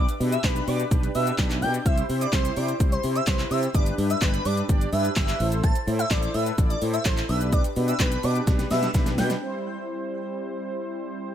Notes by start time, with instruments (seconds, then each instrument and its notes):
Already playing: analog polysynth D4 G4 B4
0.09 closed hi-hat, shaker
0.20 fretless electric bass B2, analog polysynth D4 G4 B4, open hi-hat, shaker
0.32 digital synth lead E5, closed hi-hat, shaker
0.44 fretless electric bass B1, analog polysynth D4 G4 B4, digital synth lead B4, kick, snare, clap, closed hi-hat, shaker
0.56 closed hi-hat, shaker
0.67 fretless electric bass B2, analog polysynth D4 G4 B4, digital synth lead D5, open hi-hat, shaker
0.80 closed hi-hat, shaker
0.91 fretless electric bass B1, analog polysynth D4 G4 B4, kick, closed hi-hat, shaker
1.03 closed hi-hat, shaker
1.15 fretless electric bass B2, analog polysynth D4 G4 B4, digital synth lead E5, open hi-hat, shaker
1.27 closed hi-hat, shaker
1.38 fretless electric bass B1, analog polysynth D4 G4 B4, kick, snare, clap, closed hi-hat, shaker
1.51 clap, closed hi-hat, shaker
1.62 fretless electric bass B2, analog polysynth D4 G4 D5, digital synth lead G5, open hi-hat, shaker
1.74 closed hi-hat, shaker
1.85 fretless electric bass C2, analog polysynth E4 G4 C5, digital synth lead E5, kick, closed hi-hat, shaker
1.98 closed hi-hat, shaker
2.09 fretless electric bass C3, analog polysynth E4 G4 C5, open hi-hat, shaker
2.21 digital synth lead D5, closed hi-hat, shaker
2.33 fretless electric bass C2, analog polysynth E4 G4 C5, digital synth lead C5, kick, snare, clap, closed hi-hat, shaker
2.45 closed hi-hat, shaker
2.56 fretless electric bass C3, analog polysynth E4 G4 C5, digital synth lead D5, open hi-hat, shaker
2.68 closed hi-hat, shaker
2.80 fretless electric bass C2, analog polysynth E4 G4 C5, kick, closed hi-hat, shaker
2.92 digital synth lead C5, closed hi-hat, shaker
3.03 fretless electric bass C3, analog polysynth E4 G4 C5, open hi-hat, shaker
3.16 digital synth lead E5, closed hi-hat, shaker
3.27 fretless electric bass C2, analog polysynth E4 G4 B4, digital synth lead C5, kick, snare, clap, closed hi-hat, shaker
3.39 clap, closed hi-hat, shaker
3.51 fretless electric bass C3, analog polysynth E4 G4 C5, digital synth lead E5, open hi-hat, shaker
3.63 closed hi-hat, shaker
3.74 fretless electric bass G1, analog polysynth D4 G4 B4, digital synth lead D5, kick, closed hi-hat, shaker
3.86 closed hi-hat, shaker
3.98 fretless electric bass G2, analog polysynth D4 G4 B4, open hi-hat, shaker
4.10 digital synth lead E5, closed hi-hat, shaker
4.22 fretless electric bass G1, analog polysynth D4 G4 B4, digital synth lead B4, kick, snare, clap, closed hi-hat, shaker
4.34 closed hi-hat, shaker
4.45 fretless electric bass G2, analog polysynth D4 G4 B4, digital synth lead D5, open hi-hat, shaker
4.57 closed hi-hat, shaker
4.69 fretless electric bass G1, analog polysynth D4 G4 D5, kick, closed hi-hat, shaker
4.81 closed hi-hat, shaker
4.93 fretless electric bass G2, analog polysynth D4 G4 B4, digital synth lead E5, open hi-hat, shaker
5.05 closed hi-hat, shaker
5.16 fretless electric bass G1, analog polysynth D4 G4 B4, digital synth lead E5, kick, snare, clap, closed hi-hat, shaker
5.28 clap, closed hi-hat, shaker
5.40 fretless electric bass A1, analog polysynth E4 A4 C5, open hi-hat, shaker
5.52 closed hi-hat, shaker
5.63 digital synth lead A5, kick, closed hi-hat, shaker
5.75 closed hi-hat, shaker
5.87 fretless electric bass A2, analog polysynth E4 A4 C5, open hi-hat, shaker
5.99 digital synth lead E5, closed hi-hat, shaker
6.10 fretless electric bass A1, analog polysynth E4 A4 C5, digital synth lead D5, kick, snare, clap, closed hi-hat, shaker
6.23 closed hi-hat, shaker
6.34 fretless electric bass A2, analog polysynth E4 A4 B4, digital synth lead E5, open hi-hat, shaker
6.46 closed hi-hat, shaker
6.58 fretless electric bass A1, analog polysynth E4 A4 D5, kick, closed hi-hat, shaker
6.70 digital synth lead D5, closed hi-hat, shaker
6.81 fretless electric bass A2, analog polysynth E4 A4 C5, open hi-hat, shaker
6.93 digital synth lead E5, closed hi-hat, shaker
7.05 fretless electric bass A1, analog polysynth E4 A4 C5, digital synth lead C5, kick, snare, clap, closed hi-hat, shaker
7.17 clap, closed hi-hat, shaker
7.29 fretless electric bass B1, analog polysynth D4 G4 B4, digital synth lead E5, open hi-hat, shaker
7.41 closed hi-hat, shaker
7.52 digital synth lead D5, kick, closed hi-hat, shaker
7.64 closed hi-hat, shaker
7.76 fretless electric bass B2, analog polysynth D4 G4 B4, open hi-hat, shaker
7.88 digital synth lead E5, closed hi-hat, shaker
8.00 fretless electric bass B1, analog polysynth D4 G4 B4, digital synth lead B4, kick, snare, clap, closed hi-hat, shaker
8.12 closed hi-hat, shaker
8.23 fretless electric bass B2, analog polysynth D4 G4 B4, digital synth lead D5, open hi-hat, shaker
8.35 closed hi-hat, shaker
8.47 fretless electric bass B1, analog polysynth D4 G4 B4, kick, snare, closed hi-hat, shaker
8.59 snare, closed hi-hat, shaker
8.70 fretless electric bass B2, analog polysynth D4 G4 B4, digital synth lead E5, snare, open hi-hat, shaker
8.83 snare, closed hi-hat, shaker
8.94 fretless electric bass B1, analog polysynth D4 G4 B4, kick, snare, closed hi-hat, shaker
9.06 snare, closed hi-hat, shaker
9.18 fretless electric bass B2, analog polysynth D4 G4 B4, digital synth lead G5, snare, open hi-hat, shaker
9.30 snare, closed hi-hat, shaker
9.41 analog polysynth G3 C4 E4 C5